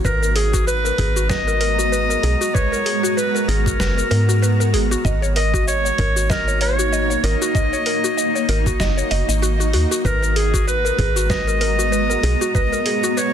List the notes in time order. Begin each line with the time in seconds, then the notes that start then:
0.04 G#1 G#3 B3 F#4 A#4 B4 A#5, kick, shaker
0.22 A#4, shaker
0.35 G#4, open hi-hat
0.54 F#4, kick, shaker
0.66 B4, shaker
0.85 A#4, shaker
0.98 G#1 G#4, kick, open hi-hat
1.16 F#4, shaker
1.29 B4 D#5, kick, snare, shaker
1.48 A#4, shaker
1.61 A#4, open hi-hat
1.79 F#4, shaker
1.92 B4, shaker
2.10 A#4, shaker
2.23 B1 G#4, open hi-hat
2.41 F#4, shaker
2.54 B4 C#5, kick, shaker
2.72 A#4, shaker
2.86 G#4, open hi-hat
3.03 F#4, shaker
3.17 B4, shaker
3.35 A#4, shaker
3.48 G#1 G#4 A#4, open hi-hat
3.66 F#4, kick, shaker
3.80 F#1 B4, kick, snare, shaker
3.98 A#4, shaker
4.11 G#2 A#4, open hi-hat
4.29 F#4, shaker
4.42 B4, shaker
4.60 A#4, shaker
4.73 G#1 G#4, open hi-hat
4.91 F#4, shaker
5.05 G#1 A#3 D#4 F#4 C#5 D#5, kick, shaker
5.22 C#5, shaker
5.36 A#4 D#5, open hi-hat
5.54 F#4, kick, shaker
5.67 C#5 D#5, shaker
5.85 C#5, shaker
5.98 G#1 A#4, kick, open hi-hat
6.16 F#4, shaker
6.30 A#4 D#5, kick, snare, shaker
6.48 C#5, shaker
6.61 C#5, open hi-hat
6.79 F#4, shaker
6.92 D#5, shaker
7.10 C#5, shaker
7.24 G#1 A#4 D#5, open hi-hat
7.42 F#4, shaker
7.55 D#5, kick, shaker
7.73 C#5, shaker
7.86 A#4, open hi-hat
8.04 F#4, shaker
8.17 D#5, shaker
8.35 C#5, shaker
8.49 G#1 A#4, open hi-hat
8.66 F#4, kick, shaker
8.80 F#1 D#5, kick, snare, shaker
8.97 C#5, shaker
9.11 F#1 D#5, open hi-hat
9.29 G#1 D#5, shaker
9.42 F#4, shaker
9.60 F#4, shaker
9.73 D#2 F#4, open hi-hat
9.91 F#4, shaker
10.05 G#1 G#3 B3 A#4 B4 A#5, kick, shaker
10.23 A#4, shaker
10.36 G#4, open hi-hat
10.54 F#4, kick, shaker
10.67 B4, shaker
10.85 A#4, shaker
10.98 G#1 G#4, kick, open hi-hat
11.16 F#4, shaker
11.30 B4 D#5, kick, snare, shaker
11.47 A#4, shaker
11.61 A#4, open hi-hat
11.79 F#4, shaker
11.92 B4, shaker
12.10 A#4, shaker
12.23 B1 G#4, open hi-hat
12.41 F#4, shaker
12.55 B4 D#5, kick, shaker
12.72 A#4, shaker
12.86 G#4, open hi-hat
13.04 F#4, shaker
13.17 B4 C#5, shaker